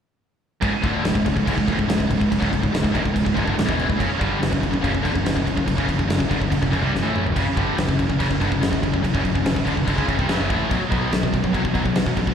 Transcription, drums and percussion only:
0.62 kick loud
0.62 crash medium
0.84 kick loud
0.84 crash medium
1.05 snare loud
1.05 crash medium
1.15 kick loud
1.26 kick medium
1.26 crash medium
1.37 kick medium
1.47 kick medium
1.47 crash medium
1.58 kick medium
1.68 kick medium
1.68 crash medium
1.79 kick medium
1.89 snare loud
1.89 crash medium
2.00 kick medium
2.11 kick medium
2.11 crash medium
2.21 kick medium
2.32 kick medium
2.32 crash medium
2.42 kick medium
2.53 kick medium
2.53 crash medium
2.63 kick medium
2.74 snare loud
2.74 crash medium
2.84 kick medium
2.95 kick medium
2.95 crash medium
3.05 kick medium
3.16 kick medium
3.16 crash medium
3.26 kick medium
3.37 kick medium
3.37 crash medium
3.47 kick medium
3.59 snare loud
3.59 crash medium
3.69 kick loud
3.79 crash medium
3.90 kick medium
4.00 kick medium
4.00 crash medium
4.21 kick loud
4.21 crash medium
4.43 snare loud
4.43 crash medium
4.53 kick loud
4.63 kick medium
4.63 crash medium
4.74 kick medium
4.84 kick medium
4.84 crash medium
4.95 kick medium
5.05 kick medium
5.05 crash medium
5.16 kick medium
5.26 snare loud
5.26 crash medium
5.37 kick medium
5.47 kick medium
5.47 crash medium
5.57 kick medium
5.68 kick medium
5.68 crash medium
5.78 kick loud
5.89 kick medium
5.89 crash medium
5.99 kick medium
6.10 snare loud
6.10 crash medium
6.20 kick medium
6.31 kick medium
6.31 crash medium
6.42 kick medium
6.52 kick medium
6.52 crash medium
6.63 kick medium
6.73 kick medium
6.73 crash medium
6.95 snare medium
7.16 mid tom medium
7.26 floor tom medium
7.36 kick medium
7.36 crash medium
7.57 kick loud
7.57 crash medium
7.78 snare loud
7.78 crash medium
7.89 kick loud
7.99 kick medium
7.99 crash medium
8.10 kick medium
8.20 kick medium
8.20 crash medium
8.31 kick medium
8.41 kick medium
8.41 crash medium
8.52 kick medium
8.63 snare loud
8.63 crash medium
8.73 kick medium
8.83 kick medium
8.83 crash medium
8.94 kick medium
9.04 kick medium
9.04 crash medium
9.15 kick medium
9.25 kick medium
9.25 crash medium
9.35 kick medium
9.46 snare loud
9.46 crash medium
9.56 kick loud
9.67 kick medium
9.67 crash medium
9.77 kick medium
9.88 kick medium
9.88 crash medium
9.98 kick medium
10.09 kick medium
10.09 crash medium
10.19 kick medium
10.29 snare loud
10.29 crash medium
10.50 kick loud
10.50 crash medium
10.71 kick loud
10.71 crash medium
10.92 kick loud
10.92 crash medium
11.12 snare loud
11.12 crash medium
11.23 kick medium
11.34 kick medium
11.34 crash medium
11.44 kick medium
11.54 kick medium
11.54 crash medium
11.65 kick medium
11.75 kick medium
11.75 crash medium
11.86 kick medium
11.95 snare loud
11.95 crash medium
12.06 kick medium
12.17 kick medium
12.17 crash medium
12.27 kick medium

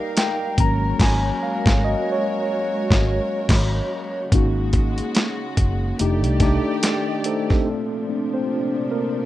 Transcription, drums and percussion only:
0.17 snare loud
0.17 closed hi-hat loud
0.58 kick loud
0.58 closed hi-hat medium
1.00 kick loud
1.00 snare loud
1.00 crash medium
1.66 kick loud
1.66 snare loud
2.91 kick loud
2.91 snare loud
3.49 kick loud
3.49 snare loud
3.49 crash medium
4.32 kick loud
4.32 closed hi-hat medium
4.73 kick medium
4.73 closed hi-hat medium
4.98 closed hi-hat soft
5.15 snare loud
5.15 closed hi-hat medium
5.57 kick medium
5.57 closed hi-hat medium
5.99 closed hi-hat medium
6.24 closed hi-hat soft
6.40 kick medium
6.40 snare soft
6.40 closed hi-hat medium
6.83 snare loud
6.83 closed hi-hat loud
7.24 closed hi-hat medium
7.50 kick medium
7.50 snare soft

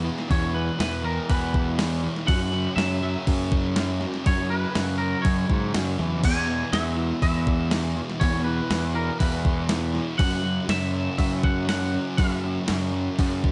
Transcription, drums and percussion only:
0.18 snare soft
0.31 kick loud
0.31 open hi-hat medium
0.80 snare loud
0.80 open hi-hat medium
1.30 kick loud
1.30 open hi-hat medium
1.54 kick medium
1.79 snare loud
1.79 open hi-hat medium
2.16 snare soft
2.28 kick loud
2.28 open hi-hat medium
2.78 snare loud
2.78 open hi-hat medium
3.27 kick loud
3.27 open hi-hat medium
3.52 kick loud
3.76 snare loud
3.76 open hi-hat medium
4.01 snare soft
4.14 snare soft
4.26 kick loud
4.26 open hi-hat medium
4.75 snare loud
4.75 open hi-hat medium
5.25 kick loud
5.25 open hi-hat medium
5.50 kick medium
5.74 snare loud
5.74 open hi-hat medium
5.99 snare soft
6.24 kick loud
6.24 crash loud
6.73 snare loud
6.73 open hi-hat medium
7.22 kick medium
7.22 open hi-hat medium
7.47 kick loud
7.71 snare loud
7.71 open hi-hat medium
8.10 snare soft
8.21 kick loud
8.21 open hi-hat medium
8.71 snare loud
8.71 open hi-hat medium
9.20 kick loud
9.20 open hi-hat medium
9.45 kick loud
9.69 snare loud
9.69 open hi-hat medium
9.95 snare soft
10.19 kick loud
10.19 open hi-hat medium
10.69 snare loud
10.69 open hi-hat medium
11.19 kick medium
11.19 open hi-hat medium
11.44 kick loud
11.69 snare loud
11.69 open hi-hat medium
12.18 kick loud
12.18 open hi-hat medium
12.68 snare loud
12.68 open hi-hat medium
13.19 kick medium
13.19 open hi-hat medium
13.44 kick medium

